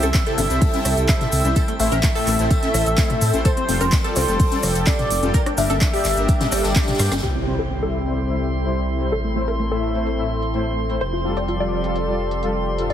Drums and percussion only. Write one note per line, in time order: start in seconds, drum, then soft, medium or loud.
0.02 closed hi-hat soft
0.02 high conga medium
0.02 cabasa medium
0.14 kick loud
0.14 snare loud
0.14 clap loud
0.14 closed hi-hat medium
0.14 tambourine medium
0.14 cabasa soft
0.26 snare soft
0.26 closed hi-hat soft
0.38 open hi-hat loud
0.38 tambourine medium
0.38 high conga medium
0.38 cabasa loud
0.50 snare soft
0.50 closed hi-hat soft
0.50 cabasa medium
0.61 kick loud
0.61 closed hi-hat medium
0.61 open hi-hat medium
0.61 cabasa soft
0.74 snare soft
0.74 closed hi-hat soft
0.74 high conga medium
0.85 cross-stick medium
0.85 open hi-hat loud
0.85 tambourine medium
0.85 cabasa loud
0.97 closed hi-hat soft
0.97 cabasa soft
1.08 kick loud
1.08 snare loud
1.08 clap loud
1.08 closed hi-hat medium
1.08 tambourine medium
1.08 high conga medium
1.08 cabasa soft
1.21 snare medium
1.21 closed hi-hat soft
1.21 mid tom medium
1.32 open hi-hat loud
1.32 tambourine medium
1.32 cabasa medium
1.45 closed hi-hat soft
1.45 high conga medium
1.45 cabasa medium
1.56 kick loud
1.56 closed hi-hat medium
1.56 tambourine medium
1.56 cabasa soft
1.68 closed hi-hat soft
1.79 open hi-hat loud
1.79 tambourine medium
1.79 cabasa medium
1.92 snare soft
1.92 closed hi-hat soft
1.92 high conga medium
1.92 cabasa soft
2.03 kick loud
2.03 snare loud
2.03 clap loud
2.03 closed hi-hat medium
2.03 tambourine loud
2.03 cabasa soft
2.15 snare soft
2.15 open hi-hat medium
2.27 clap soft
2.27 open hi-hat loud
2.27 tambourine medium
2.27 cabasa loud
2.39 snare soft
2.39 closed hi-hat soft
2.39 cabasa soft
2.50 kick loud
2.50 closed hi-hat medium
2.50 tambourine medium
2.50 cabasa soft
2.62 snare soft
2.62 closed hi-hat soft
2.62 high conga medium
2.74 cross-stick medium
2.74 snare medium
2.74 open hi-hat loud
2.74 tambourine medium
2.74 cabasa medium
2.86 closed hi-hat soft
2.86 cabasa medium
2.97 kick loud
2.97 snare loud
2.97 clap loud
2.97 closed hi-hat medium
2.97 tambourine medium
2.97 high conga medium
2.97 cabasa soft
3.10 closed hi-hat soft
3.10 mid tom medium
3.21 open hi-hat loud
3.21 tambourine medium
3.21 cabasa medium
3.34 closed hi-hat soft
3.34 high conga medium
3.34 cabasa medium
3.45 kick loud
3.45 closed hi-hat medium
3.45 tambourine loud
3.45 cabasa soft
3.57 closed hi-hat soft
3.69 open hi-hat loud
3.69 tambourine medium
3.69 cabasa medium
3.81 closed hi-hat soft
3.81 high conga medium
3.81 cabasa medium
3.92 kick loud
3.92 snare loud
3.92 clap loud
3.92 closed hi-hat medium
3.92 tambourine medium
3.92 cabasa soft
4.04 snare soft
4.04 closed hi-hat soft
4.16 open hi-hat loud
4.16 tambourine medium
4.16 high conga medium
4.16 cabasa medium
4.28 snare soft
4.28 closed hi-hat soft
4.28 cabasa medium
4.40 kick loud
4.40 closed hi-hat medium
4.40 open hi-hat medium
4.40 cabasa soft
4.51 snare soft
4.51 closed hi-hat soft
4.51 high conga medium
4.63 cross-stick medium
4.63 open hi-hat loud
4.63 tambourine medium
4.63 cabasa medium
4.75 closed hi-hat soft
4.75 cabasa medium
4.87 kick loud
4.87 snare loud
4.87 clap loud
4.87 closed hi-hat medium
4.87 tambourine loud
4.87 high conga medium
4.87 cabasa soft
4.99 snare soft
4.99 closed hi-hat soft
4.99 mid tom medium
5.11 open hi-hat loud
5.11 tambourine medium
5.11 cabasa medium
5.23 closed hi-hat soft
5.23 high conga medium
5.23 cabasa medium
5.34 kick loud
5.34 closed hi-hat medium
5.34 tambourine medium
5.34 cabasa soft
5.46 cross-stick medium
5.46 closed hi-hat soft
5.58 open hi-hat loud
5.58 tambourine medium
5.58 cabasa medium
5.69 snare soft
5.69 closed hi-hat soft
5.69 high conga loud
5.69 cabasa medium
5.81 kick loud
5.81 snare loud
5.81 clap loud
5.81 closed hi-hat medium
5.81 tambourine medium
5.81 cabasa soft
5.94 snare soft
5.94 open hi-hat medium
6.04 snare loud
6.04 clap soft
6.04 open hi-hat loud
6.04 tambourine medium
6.04 cabasa medium
6.17 snare soft
6.17 closed hi-hat soft
6.17 cabasa medium
6.28 kick loud
6.28 closed hi-hat medium
6.28 tambourine medium
6.28 cabasa soft
6.40 snare medium
6.40 closed hi-hat soft
6.40 mid tom medium
6.40 tambourine medium
6.40 high conga loud
6.52 cross-stick medium
6.52 snare loud
6.52 open hi-hat loud
6.52 tambourine medium
6.52 cabasa medium
6.64 snare loud
6.64 closed hi-hat soft
6.64 tambourine medium
6.64 cabasa medium
6.76 kick loud
6.76 snare medium
6.76 clap loud
6.76 closed hi-hat medium
6.76 high conga medium
6.76 cabasa soft
6.81 snare medium
6.81 tambourine medium
6.87 snare medium
6.87 closed hi-hat soft
6.87 mid tom medium
6.87 tambourine medium
6.94 snare medium
6.94 tambourine medium
6.99 snare medium
6.99 open hi-hat loud
6.99 tambourine medium
6.99 cabasa medium
7.05 snare medium
7.05 tambourine medium
7.12 snare medium
7.12 closed hi-hat soft
7.12 tambourine medium
7.12 high conga loud
7.12 cabasa soft
7.18 snare medium
7.18 tambourine medium
7.59 closed hi-hat medium
7.70 closed hi-hat soft
8.06 closed hi-hat medium
8.18 closed hi-hat soft
8.53 closed hi-hat medium
8.65 closed hi-hat soft
9.01 closed hi-hat medium
9.12 closed hi-hat soft
9.48 closed hi-hat medium
9.59 closed hi-hat medium
9.95 closed hi-hat medium
10.07 closed hi-hat medium
10.42 closed hi-hat medium
10.54 closed hi-hat soft
10.90 closed hi-hat medium
11.01 closed hi-hat soft
11.37 closed hi-hat medium
11.48 closed hi-hat medium
11.84 closed hi-hat medium
11.96 closed hi-hat soft
12.31 closed hi-hat medium
12.43 closed hi-hat soft
12.78 closed hi-hat medium
12.90 closed hi-hat soft